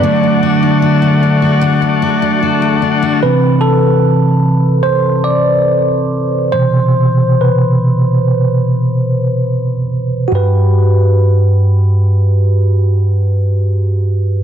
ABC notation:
X:1
M:4/4
L:1/16
Q:1/4=69
K:G
V:1 name="Tonewheel organ"
[A,DFdf]16 | z16 | z16 | z16 |]
V:2 name="Tine electric piano"
d12- d2 z2 | B2 A6 c2 d6 | c4 B8- B2 z2 | [FGB]16 |]
V:3 name="Tine electric piano" clef=bass
[D,F,A,]6 z8 z2 | [C,E,C]2 z12 z2 | [B,,C,E,]2 z12 z2 | G,,16 |]
V:4 name="Steel-string acoustic guitar"
[D,F] D F D F A, D F [D,F] D F D F A, D F | z16 | z16 | z16 |]